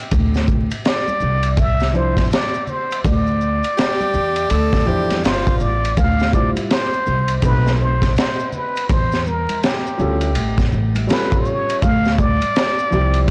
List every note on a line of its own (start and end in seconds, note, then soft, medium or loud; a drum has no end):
0.11 0.67 D2 loud
0.11 kick loud
0.11 ride medium
0.11 maracas medium
0.34 snare soft
0.34 maracas soft
0.48 kick medium
0.48 maracas soft
0.70 ride medium
0.70 maracas soft
0.85 1.61 D5 loud
0.85 snare loud
0.85 hi-hat pedal soft
0.85 ride medium
0.85 maracas medium
1.08 high conga medium
1.08 maracas soft
1.20 2.14 C2 medium
1.20 low conga medium
1.20 maracas soft
1.43 ride medium
1.43 maracas soft
1.57 1.97 E5 loud
1.57 kick medium
1.57 ride medium
1.57 maracas medium
1.80 snare soft
1.80 maracas soft
1.93 2.22 F3 medium
1.93 2.23 D4 medium
1.93 2.23 E4 medium
1.93 2.32 C5 medium
1.93 2.24 C5 medium
1.93 low conga medium
1.93 maracas soft
2.17 kick medium
2.17 snare soft
2.17 ride medium
2.17 high conga medium
2.17 maracas soft
2.31 2.71 D5 loud
2.31 snare loud
2.31 hi-hat pedal medium
2.31 ride medium
2.31 maracas medium
2.54 maracas soft
2.67 3.07 C5 medium
2.67 low conga medium
2.67 maracas soft
2.91 ride medium
2.91 maracas soft
3.04 3.60 D2 loud
3.04 5.24 D5 medium
3.04 kick loud
3.04 ride medium
3.04 maracas medium
3.27 maracas soft
3.41 maracas soft
3.63 ride medium
3.63 maracas soft
3.78 4.52 G4 loud
3.78 snare loud
3.78 hi-hat pedal soft
3.78 ride medium
3.78 maracas medium
4.01 high conga medium
4.01 maracas soft
4.14 4.48 E2 medium
4.14 low conga medium
4.14 maracas soft
4.36 ride medium
4.36 maracas soft
4.50 4.84 D2 loud
4.50 4.89 A4 loud
4.50 ride medium
4.50 maracas medium
4.73 kick medium
4.73 snare soft
4.73 maracas soft
4.85 5.21 E2 medium
4.85 5.15 F3 medium
4.85 5.15 D4 medium
4.85 5.16 E4 medium
4.85 5.24 G4 medium
4.85 5.16 C5 medium
4.85 low conga medium
4.85 maracas soft
5.10 snare soft
5.10 ride medium
5.10 high conga medium
5.10 maracas soft
5.24 5.58 G1 medium
5.24 5.93 F4 medium
5.24 5.63 C5 medium
5.24 snare loud
5.24 hi-hat pedal medium
5.24 ride medium
5.24 maracas medium
5.47 kick medium
5.47 maracas soft
5.60 5.94 A1 medium
5.60 6.00 D5 medium
5.60 low conga medium
5.60 maracas soft
5.84 ride medium
5.84 maracas soft
5.97 6.53 D2 loud
5.97 6.34 F5 loud
5.97 kick loud
5.97 ride medium
5.97 maracas medium
6.19 snare soft
6.19 maracas soft
6.32 6.78 G3 medium
6.32 6.79 E4 soft
6.32 6.80 F4 medium
6.32 6.80 C5 medium
6.32 6.50 D5 loud
6.32 kick medium
6.32 high conga soft
6.32 maracas soft
6.56 ride medium
6.56 high conga medium
6.56 maracas soft
6.71 7.40 C5 loud
6.71 snare loud
6.71 hi-hat pedal soft
6.71 ride medium
6.71 maracas medium
6.93 maracas soft
7.07 7.41 C2 medium
7.07 low conga medium
7.07 maracas soft
7.28 ride medium
7.28 maracas soft
7.42 8.12 B1 loud
7.42 7.88 A3 medium
7.42 7.89 C4 medium
7.42 7.89 D#4 medium
7.42 7.78 B4 loud
7.42 7.90 B4 medium
7.42 kick medium
7.42 ride medium
7.42 high conga soft
7.42 maracas medium
7.66 snare soft
7.66 maracas soft
7.80 8.15 C5 medium
7.80 low conga soft
7.80 maracas soft
8.02 kick medium
8.02 snare soft
8.02 ride medium
8.02 high conga medium
8.02 maracas soft
8.16 8.56 C5 medium
8.16 snare loud
8.16 hi-hat pedal medium
8.16 ride medium
8.16 maracas medium
8.39 maracas soft
8.52 8.92 B4 medium
8.52 low conga medium
8.52 maracas soft
8.76 ride medium
8.76 maracas soft
8.89 9.45 E2 loud
8.89 9.29 C5 medium
8.89 kick loud
8.89 ride medium
8.89 maracas medium
9.12 snare soft
9.12 maracas soft
9.26 9.66 A#4 medium
9.26 high conga soft
9.26 maracas soft
9.49 ride medium
9.49 high conga medium
9.49 maracas soft
9.63 10.73 G4 medium
9.63 snare loud
9.63 hi-hat pedal soft
9.63 ride medium
9.63 maracas medium
9.86 maracas soft
9.98 10.36 D2 loud
9.98 10.27 G3 medium
9.98 10.27 C#4 medium
9.98 10.28 F4 medium
9.98 10.28 A4 medium
9.98 low conga medium
9.98 maracas soft
10.21 ride medium
10.21 maracas soft
10.35 10.70 A1 loud
10.35 ride medium
10.35 high conga soft
10.35 maracas medium
10.58 kick medium
10.58 snare soft
10.58 maracas soft
10.72 11.06 A1 medium
10.72 low conga soft
10.72 maracas soft
10.95 ride medium
10.95 high conga medium
10.95 maracas soft
11.07 11.81 G3 medium
11.07 11.82 C#4 medium
11.07 11.82 F4 medium
11.07 11.83 A4 medium
11.07 11.43 B4 medium
11.07 snare loud
11.07 hi-hat pedal medium
11.07 ride medium
11.07 maracas medium
11.32 kick medium
11.32 maracas soft
11.41 11.48 C5 medium
11.45 11.84 C#5 medium
11.45 low conga medium
11.45 maracas medium
11.69 ride medium
11.69 maracas soft
11.82 12.38 D2 loud
11.82 12.20 F5 loud
11.82 kick loud
11.82 ride medium
11.82 maracas medium
12.05 snare soft
12.05 maracas soft
12.18 13.30 D5 loud
12.18 kick medium
12.18 high conga soft
12.18 maracas soft
12.41 ride medium
12.41 high conga medium
12.41 maracas soft
12.56 snare loud
12.56 hi-hat pedal medium
12.56 ride medium
12.56 maracas medium
12.79 maracas medium
12.90 13.31 C2 medium
12.90 13.31 F3 medium
12.90 13.31 C4 medium
12.90 13.31 E4 medium
12.90 13.31 G4 medium
12.90 low conga medium
12.90 maracas medium
13.14 ride medium
13.14 maracas soft